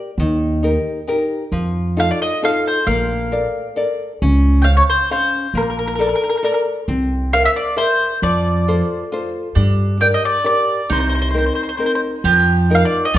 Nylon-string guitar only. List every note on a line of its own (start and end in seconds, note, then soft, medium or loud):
0.00 0.10 A#4 soft
0.00 0.11 D5 soft
0.20 0.62 D#3 medium
0.63 0.98 D#4 soft
0.63 0.99 G4 soft
0.63 0.99 A#4 soft
1.07 1.43 D#4 soft
1.07 1.43 G4 soft
1.07 1.44 A#4 soft
1.52 1.95 F3 medium
1.97 2.32 D#4 soft
1.97 2.33 F4 soft
1.97 2.33 A4 soft
2.42 2.78 D#4 soft
2.42 2.78 F4 soft
2.42 2.78 A4 soft
2.88 3.30 A#3 medium
3.32 3.67 A4 soft
3.32 3.67 A#4 soft
3.32 3.68 D5 soft
3.76 4.12 A4 soft
3.76 4.12 A#4 soft
3.76 4.12 D5 soft
4.22 4.65 C#4 medium
4.65 5.01 C5 soft
4.65 5.01 C#5 soft
4.65 5.01 F5 soft
5.11 5.46 C#4 soft
5.11 5.46 C5 soft
5.11 5.46 F5 soft
5.55 5.98 A#3 medium
5.99 6.35 A4 soft
5.99 6.35 A#4 soft
5.99 6.35 D5 soft
6.43 6.79 A4 soft
6.43 6.79 A#4 soft
6.43 6.80 D5 soft
6.88 7.32 C4 medium
7.34 7.69 A#4 soft
7.34 7.70 C5 soft
7.34 7.69 E5 soft
7.76 8.12 A#4 soft
7.76 8.13 C5 soft
7.76 8.13 E5 soft
8.23 8.66 F3 medium
8.68 9.03 F4 soft
8.68 9.04 A4 soft
8.68 9.04 C5 soft
9.12 9.48 F4 soft
9.12 9.48 A4 soft
9.12 9.49 C5 soft
9.56 10.00 G3 medium
10.00 10.36 G4 soft
10.00 10.37 A#4 soft
10.00 10.37 D5 soft
10.44 10.81 G4 soft
10.44 10.81 A#4 soft
10.44 10.81 D5 soft
10.90 11.33 C3 medium
11.34 11.71 C4 soft
11.34 11.70 D#4 soft
11.34 11.70 A#4 soft
11.78 12.15 C4 soft
11.78 12.16 D#4 soft
11.78 12.16 A#4 soft
12.25 12.68 F3 medium
12.70 13.05 D#4 soft
12.70 13.06 F4 soft
12.70 13.06 A#4 soft
13.15 13.18 F3 medium